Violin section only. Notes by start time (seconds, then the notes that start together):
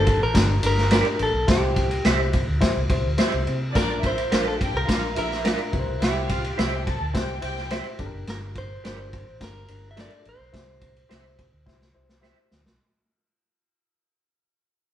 3.73 D4 D5
4.03 E4 E5
4.29 F4 F5
4.59 G4 G5
4.87 F4 F5
5.16 E4 E5
6.01 E4 E5
6.29 F4 F5
6.57 G4 G5
6.86 A4 A5
7.14 G4 G5
7.43 G4 G5